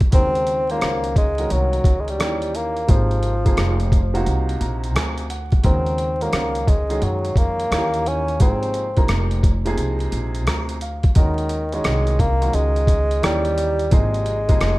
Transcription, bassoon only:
0.14 C4
0.71 A#3
1.18 G#3
1.52 F#3
2.00 G#3
2.09 G3
2.56 A#3
2.91 F3
5.65 C4
6.22 A#3
6.69 G#3
7.04 F#3
7.38 A#3
8.07 C#4
8.42 C4
11.17 D#3
11.74 G#3
12.21 A#3
12.55 G#3
13.24 G3
13.93 G#3

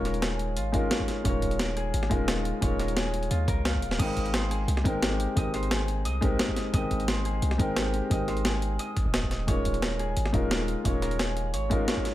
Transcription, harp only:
Already playing: F4 G#4 C#5
0.05 A#4
0.22 G#4
0.57 F4
0.91 C#5
1.25 C#5
1.59 A#4
1.77 G#4
2.28 F4
2.62 C#5
2.79 A#4
2.96 G#4
3.31 F4
3.48 A#4
3.65 F5
3.99 D#5
4.34 C5
4.51 G#4
5.02 G4
5.37 D#5
5.54 C5
5.71 G#4
6.05 D#5
6.39 D#5
6.74 D#5
7.08 C5
7.25 G#4
7.77 G4
8.11 D#5
8.28 C5
8.45 G#4
8.79 D#5
9.14 D#5
9.48 C#5
9.82 A#4
9.99 G#4
10.51 F4
10.85 C#5
11.02 A#4
11.20 G#4
11.54 C#5
11.88 C#5

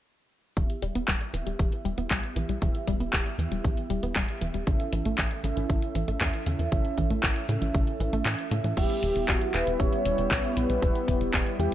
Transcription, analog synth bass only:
0.57 E1
0.82 E1
0.95 E1
1.08 E1
1.33 E1
1.46 E1
1.59 E1
1.85 E1
1.97 E1
2.11 B1
2.36 B1
2.49 B1
2.62 E1
2.88 E1
3.00 E1
3.13 E1
3.38 E2
3.51 E1
3.64 B1
3.90 E1
4.03 E1
4.16 E1
4.41 E1
4.54 E1
4.67 A1
4.93 A1
5.05 A1
5.18 A1
5.44 A1
5.57 A1
5.69 A1
5.95 A1
6.08 A1
6.21 E2
6.46 E2
6.59 E2
6.72 A1
6.98 A1
7.10 A1
7.23 A1
7.49 A2
7.62 A1
7.75 A1
8.00 A1
8.13 A1
8.26 A2
8.51 A2
8.64 A2
8.77 E1
9.03 E1
9.16 E1
9.28 E1
9.54 E1
9.67 E1
9.80 E1
10.05 E1
10.18 E1
10.31 B1
10.57 B1
10.70 B1
10.82 E1
11.08 E1
11.21 E1
11.34 E1
11.59 E2

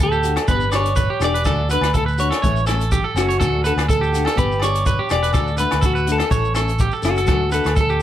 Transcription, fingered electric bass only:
Already playing: D2
0.49 G1
1.20 E1
1.46 D2
1.81 D2
2.43 A1
3.14 F#1
3.40 D2
3.76 D2
4.38 G1
5.11 E1
5.35 D2
5.73 D2
6.31 A1
7.03 F#1
7.29 D2
7.65 D2

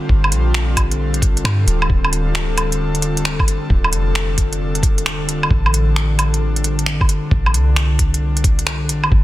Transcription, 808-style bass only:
0.09 G1
0.32 A#1
1.44 G2
1.67 D1
1.89 D1
3.70 D1
3.92 F1
5.28 D1
5.50 A1
7.31 A1
7.54 C2
8.89 A1
9.12 G1

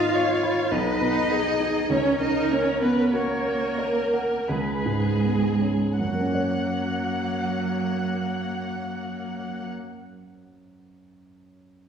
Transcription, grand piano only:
Already playing: G#2 D#3 B3 D#4 B4
0.14 D#5
0.43 B5
0.71 B1
1.01 B2
1.31 B3
1.60 D#4
1.89 C#2
2.20 C#3
2.49 A#3
2.81 C#4
3.13 F#4
3.45 A#4
3.79 C#5
4.13 F#5
4.49 C#2
4.86 G#2
5.24 B3
5.62 C#4
5.99 F#2
6.06 F#3
6.13 A#3
6.20 C#4
6.27 F#4
6.34 C#5

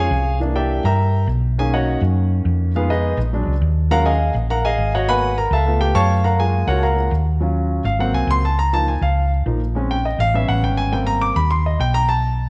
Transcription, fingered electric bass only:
0.11 C2
0.84 G2
1.27 B1
2.01 F#2
2.45 F2
3.17 A#1
3.47 C#2
3.61 D#2
4.34 A#1
4.78 G#1
5.51 C#2
5.95 F#2
6.67 C#2
7.11 D#2
7.84 G#1
8.13 C2
8.27 C#2
9.01 C#2
9.46 A#1
10.19 A1
10.49 A1
10.63 G#1
11.36 D#2
11.80 B1

